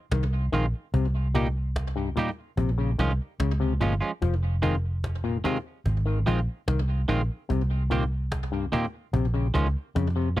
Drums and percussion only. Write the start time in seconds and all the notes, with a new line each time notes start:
0.11 cajon bass, cajon slap
0.53 cajon bass
0.94 cajon bass
1.35 cajon bass
1.76 cajon bass, cajon slap
2.17 cajon bass
2.57 cajon bass
2.99 cajon bass
3.40 cajon bass, cajon slap
3.81 cajon bass
4.22 cajon bass
4.63 cajon bass
5.04 cajon bass, cajon slap
5.45 cajon bass
5.86 cajon bass
6.27 cajon bass
6.68 cajon bass, cajon slap
7.09 cajon bass
7.50 cajon bass
7.91 cajon bass
8.32 cajon bass, cajon slap
8.73 cajon bass
9.14 cajon bass
9.55 cajon bass, cajon slap
9.96 cajon bass, cajon slap
10.10 cajon slap